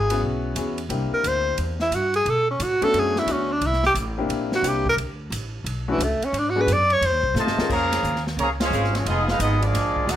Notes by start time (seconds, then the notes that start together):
Already playing: G#1 G#4
0.10 B3 C#4 E4 F#4 G#4, ride
0.21 B1
0.55 E2 B3 C#4 E4 F#4 G#4, hi-hat pedal, ride
0.78 ride
0.89 C2 A#3 C4 D4 E4 G4, ride
1.12 A#4, muted upright bass stroke
1.24 D2 C5, hi-hat pedal, ride
1.58 E2, ride
1.80 E4, snare
1.91 G2 F#4, hi-hat pedal, ride
2.14 G#4, ride
2.25 B2, ride
2.30 A4
2.51 C#4
2.60 A2 F#4, hi-hat pedal, ride
2.82 A3 B3 C#4 D4 F#4 A4, muted upright bass stroke, ride
2.93 F#2, ride
2.99 G#4
3.16 E4, snare
3.26 D2 A3 B3 C#4 D4 F#4, hi-hat pedal, ride
3.32 C#4
3.52 D4
3.61 C2, ride
3.66 E4
3.73 snare
3.83 G4, snare
3.94 A1, hi-hat pedal, ride
4.18 A#3 C4 D4 E4 G4
4.29 A#1, ride
4.52 F#4, snare
4.63 C2 A#3 C4 D4 E4 G4, hi-hat pedal, ride
4.68 G4
4.86 A#4, kick
4.96 D2, ride
5.30 A1, hi-hat pedal, ride
5.64 B1, ride
5.88 E3 A3 C#4 D4 E4 F#4
5.98 C#2, hi-hat pedal, ride
6.03 A3
6.21 muted upright bass stroke, ride
6.25 C#4
6.33 G#2, ride
6.38 D4
6.50 F#4
6.56 G#3 B3 D4 F#4 G#4
6.61 B4
6.67 F#2, hi-hat pedal, ride
6.73 D5
6.90 C#5, ride
7.01 F2, ride
7.06 C5
7.12 D#2
7.23 C2, kick
7.34 A2 C3 D#3 A3 F4 A5, snare, hi-hat pedal
7.38 C5 D#5
7.46 F2, snare
7.57 D#2 G#3 C4 C#4 F4 A#4, snare
7.69 F2 C#3 F3 A#3 C#4 G#4 C#5 F5 A#5, kick, crash
7.92 snare, ride
8.03 D#2, hi-hat pedal
8.16 snare
8.27 snare
8.37 C#2 C#3 F3 A#3 G#4 C#5 F5 A#5, ride
8.60 G#3 C#4 F4 G#4 C5 F5, snare, ride
8.70 G#1 C#3 A#3 C4 G#4, hi-hat pedal
8.84 snare
8.94 F3 G#3 C4 C#4 F4 C#5, snare, ride
9.06 F1 F3 G#3 B3 D#4 F4 G#4 D#5, ride
9.28 G#3 B3 D#4 F4 G#4 B4 F5, snare
9.39 G#1 G#3 B3 D#4 F4 G#4 D#5, hi-hat pedal, ride
9.62 F3 G#3 A#3 D4 F4 G#4 D5, ride
9.73 A#1, snare, ride
9.96 kick
10.07 D2 G#3 D4 F#4 G#4 A#4 F#5, snare, hi-hat pedal, ride